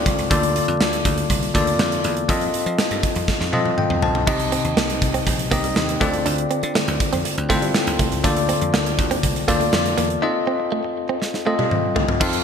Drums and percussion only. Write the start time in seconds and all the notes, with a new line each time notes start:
0.06 kick, closed hi-hat
0.19 closed hi-hat
0.31 kick, closed hi-hat
0.43 closed hi-hat
0.56 closed hi-hat
0.68 closed hi-hat
0.81 snare
0.93 closed hi-hat
1.05 kick, closed hi-hat
1.18 closed hi-hat
1.30 kick, closed hi-hat
1.43 closed hi-hat
1.55 kick, closed hi-hat
1.67 closed hi-hat
1.79 snare
1.92 closed hi-hat
2.04 closed hi-hat
2.17 closed hi-hat
2.29 kick, closed hi-hat
2.41 closed hi-hat
2.54 closed hi-hat
2.66 closed hi-hat
2.79 snare
2.91 closed hi-hat
3.03 kick, closed hi-hat
3.16 closed hi-hat
3.28 kick, snare
3.41 snare
3.53 high tom
3.65 high tom
3.78 mid tom
3.90 mid tom
4.02 floor tom
4.15 floor tom
4.27 kick, crash
4.40 closed hi-hat
4.52 closed hi-hat
4.65 closed hi-hat
4.77 snare
4.90 closed hi-hat
5.02 kick, closed hi-hat
5.14 closed hi-hat
5.27 kick, closed hi-hat
5.39 closed hi-hat
5.51 kick, closed hi-hat
5.64 closed hi-hat
5.76 snare
5.89 closed hi-hat
6.01 kick, closed hi-hat
6.13 closed hi-hat
6.26 closed hi-hat
6.38 closed hi-hat
6.51 closed hi-hat
6.63 closed hi-hat
6.75 snare
6.88 closed hi-hat
7.00 kick, closed hi-hat
7.13 closed hi-hat
7.25 closed hi-hat
7.38 closed hi-hat
7.50 kick, closed hi-hat
7.62 closed hi-hat
7.74 snare
7.87 closed hi-hat
7.99 kick, closed hi-hat
8.12 closed hi-hat
8.24 kick, closed hi-hat
8.37 closed hi-hat
8.49 closed hi-hat
8.61 closed hi-hat
8.74 snare
8.86 closed hi-hat
8.99 kick, closed hi-hat
9.11 closed hi-hat
9.23 kick, closed hi-hat
9.36 closed hi-hat
9.48 kick, closed hi-hat
9.61 closed hi-hat
9.73 snare
9.86 closed hi-hat
9.98 closed hi-hat
10.10 closed hi-hat
11.22 snare
11.34 snare
11.59 high tom
11.71 mid tom
11.96 floor tom
12.09 floor tom
12.21 kick, crash
12.33 closed hi-hat